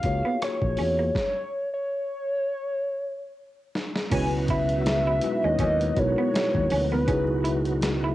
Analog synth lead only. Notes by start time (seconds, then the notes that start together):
Already playing: F5
0.44 C#5
1.17 C#5
1.73 C#5
4.14 G#5
4.50 E5
5.44 D#5
5.91 D#5
5.99 C#5
6.93 B4